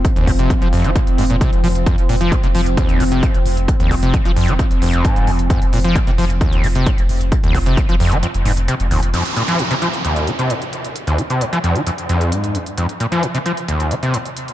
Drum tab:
HH |xxoxxxoxxxoxxxox|xxoxxxoxxxoxxxox|xxoxxxoxxxoxxxox|xxoxxxoxxxoxxxox|
BD |o-o-o---o---o---|o---o---o---o---|o-o-o---o---o---|o---o---o---o---|

HH |xxoxxxoxxxoxxxox|xxxxxxxxxxxxxxxx|xxxxxxxxxxxxxxxx|xxxxxxxxxxxxxxxx|
BD |o-o-o-----------|----------------|----------------|----------------|